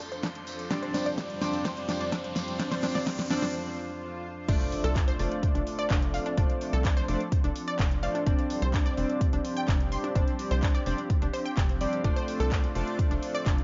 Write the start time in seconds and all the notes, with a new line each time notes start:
Already playing: F2 F3 D4 A4 C5 C6, riser
0.12 C5, closed hi-hat, tambourine
0.23 D4, kick, snare, closed hi-hat, tambourine
0.35 closed hi-hat
0.47 open hi-hat, tambourine
0.59 closed hi-hat, tambourine
0.71 G3 C4 D4 C5 D5, kick, snare, closed hi-hat, tambourine
0.83 C5, closed hi-hat
0.94 D4, snare, open hi-hat, tambourine
1.06 D5, closed hi-hat, tambourine
1.18 kick, snare, closed hi-hat, tambourine
1.30 closed hi-hat
1.41 G3 C4 D4 C5 D5, snare, open hi-hat, tambourine
1.54 closed hi-hat, tambourine
1.65 C5, kick, snare, closed hi-hat, tambourine
1.77 closed hi-hat
1.89 D4, snare, open hi-hat, tambourine
2.01 D5, closed hi-hat, tambourine
2.12 D4, kick, snare, closed hi-hat, tambourine
2.24 closed hi-hat
2.36 snare, open hi-hat, tambourine
2.48 closed hi-hat, tambourine
2.59 G3 C4 D4 C5 D5, kick, snare, closed hi-hat
2.72 C5, snare, closed hi-hat
2.83 D4, snare, open hi-hat, tambourine
2.95 D5, snare, closed hi-hat, tambourine
3.06 kick, snare, closed hi-hat, tambourine
3.19 snare, closed hi-hat
3.30 G3 C4 D4 C5 D5, snare, open hi-hat, tambourine
3.43 snare, closed hi-hat, tambourine
3.54 swell
4.48 F1 F3 A3 C4 D4 F4 A4 C5 D5, kick, closed hi-hat, crash, impact
4.61 closed hi-hat
4.72 open hi-hat
4.84 C2 A4, closed hi-hat
4.96 D4, kick, clap, closed hi-hat
5.08 C5, closed hi-hat
5.19 F1 A3 D4 F4 C5 D5, open hi-hat
5.32 closed hi-hat
5.43 kick, closed hi-hat
5.55 F1 D4, closed hi-hat
5.67 open hi-hat
5.79 D5, closed hi-hat
5.90 F1 D4, kick, clap, closed hi-hat
6.02 closed hi-hat
6.14 F5, open hi-hat
6.26 D4, closed hi-hat
6.38 F1 A3 D4 F4 C5 D5, kick, closed hi-hat
6.50 closed hi-hat
6.61 open hi-hat
6.73 C2 A4, closed hi-hat
6.85 D4, kick, clap, closed hi-hat
6.97 C5, closed hi-hat
7.08 F1 A3 D4 F4 C5 D5, open hi-hat
7.20 closed hi-hat
7.32 kick, closed hi-hat
7.44 F1 D4, closed hi-hat
7.56 open hi-hat
7.68 D5, closed hi-hat
7.79 F1 D4, kick, clap, closed hi-hat
7.91 closed hi-hat
8.03 A3 D4 F4 C5 D5 F5, open hi-hat
8.15 D4, closed hi-hat
8.26 F1 G3 C4 D4 G4 C5 D5, kick, closed hi-hat
8.39 closed hi-hat
8.50 open hi-hat
8.62 C2 C5, closed hi-hat
8.74 D4, kick, clap, closed hi-hat
8.86 D5, closed hi-hat
8.97 F1 G3 C4 D4 C5 D5, open hi-hat
9.09 closed hi-hat
9.21 kick, closed hi-hat
9.33 F1 D4, closed hi-hat
9.45 open hi-hat
9.57 G5, closed hi-hat
9.68 F1 D4, kick, clap, closed hi-hat
9.80 closed hi-hat
9.92 C6, open hi-hat
10.04 D4, closed hi-hat
10.15 F1 G3 C4 D4 C5 D5, kick, closed hi-hat
10.28 closed hi-hat
10.39 open hi-hat
10.51 C2 C5, closed hi-hat
10.63 D4, kick, clap, closed hi-hat
10.75 D5, closed hi-hat
10.86 F1 G3 C4 D4 C5 D5, open hi-hat
10.98 closed hi-hat
11.10 kick, closed hi-hat
11.22 F1 D4, closed hi-hat
11.34 C5, open hi-hat
11.46 G5, closed hi-hat
11.57 F1 G4, kick, clap, closed hi-hat
11.69 closed hi-hat
11.81 G3 C4 D4 C5 D5, open hi-hat
11.93 closed hi-hat
12.04 F1 F3 A3 C4 D4 F4 A4 C5 D5, kick, closed hi-hat
12.16 C5, closed hi-hat
12.28 open hi-hat, ride
12.40 C2 A4, closed hi-hat
12.52 D4, kick, clap, closed hi-hat
12.64 closed hi-hat
12.75 F1 A3 D4 F4 C5 D5, open hi-hat, ride
12.87 closed hi-hat
12.99 kick, closed hi-hat
13.11 F1 D4, closed hi-hat
13.23 open hi-hat, ride
13.35 D5, closed hi-hat
13.46 F1 D4, kick, clap, closed hi-hat
13.58 closed hi-hat